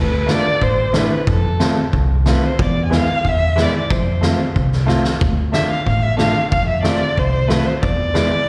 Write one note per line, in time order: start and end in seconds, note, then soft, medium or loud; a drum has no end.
0.00 0.35 D2 medium
0.00 0.32 B4 medium
0.26 0.43 A3 medium
0.26 0.44 D4 soft
0.26 0.44 F4 medium
0.26 snare medium
0.31 0.63 D5 loud
0.61 1.01 A1 medium
0.61 0.97 C5 medium
0.61 kick medium
0.93 1.10 A3 medium
0.93 1.10 D4 medium
0.93 1.11 E4 medium
0.93 1.11 B4 medium
0.93 snare medium
1.13 1.27 B4 medium
1.27 1.67 F2 medium
1.27 1.90 A4 medium
1.27 kick medium
1.60 1.76 A3 medium
1.60 1.76 C4 medium
1.60 1.76 F4 medium
1.60 snare medium
1.93 2.32 C2 medium
1.93 kick soft
2.26 2.42 A3 medium
2.26 2.42 C4 medium
2.26 2.42 F4 medium
2.26 2.47 B4 medium
2.26 snare medium
2.45 2.63 C5 medium
2.59 2.98 E2 loud
2.59 2.85 D5 medium
2.59 kick loud
2.85 2.96 G#5 medium
2.90 3.07 G#3 medium
2.90 3.07 B3 medium
2.90 3.07 E4 medium
2.90 snare medium
2.94 3.30 F5 loud
3.24 3.64 E2 medium
3.24 kick soft
3.29 3.63 E5 loud
3.56 3.73 G#3 medium
3.56 3.73 B3 medium
3.56 3.73 E4 medium
3.56 snare medium
3.62 3.76 D5 medium
3.76 3.92 D5 medium
3.90 4.30 F2 loud
3.90 4.55 C5 medium
3.90 kick loud
4.21 4.38 A3 medium
4.21 4.38 C4 medium
4.21 4.39 F4 medium
4.21 snare medium
4.56 4.95 C2 medium
4.56 kick soft
4.73 snare soft
4.86 5.03 A3 medium
4.86 5.04 C4 medium
4.86 5.04 F4 medium
4.86 snare soft
5.05 snare medium
5.21 5.61 D2 medium
5.21 kick medium
5.52 5.69 A3 medium
5.52 5.69 D4 medium
5.52 5.70 F4 medium
5.52 5.69 E5 loud
5.52 snare medium
5.70 5.85 F5 loud
5.86 6.25 A1 medium
5.86 6.04 F5 medium
5.86 kick medium
6.03 6.19 E5 loud
6.17 6.34 A3 medium
6.17 6.35 D4 medium
6.17 6.35 F4 medium
6.17 6.50 F5 loud
6.17 snare medium
6.51 6.91 F2 medium
6.51 6.67 F5 medium
6.51 kick medium
6.68 6.83 E5 medium
6.83 7.00 A3 medium
6.83 7.00 C4 medium
6.83 7.01 F4 medium
6.83 7.20 D5 medium
6.83 snare medium
7.18 7.57 C2 medium
7.18 7.50 C5 medium
7.18 kick soft
7.48 7.65 A3 medium
7.48 7.66 C4 medium
7.48 7.66 F4 medium
7.48 7.68 B4 loud
7.48 snare medium
7.66 7.82 C5 medium
7.83 8.22 E2 loud
7.83 8.49 D5 loud
7.83 kick medium
8.14 8.31 G#3 medium
8.14 8.31 B3 medium
8.14 8.32 E4 medium
8.14 snare medium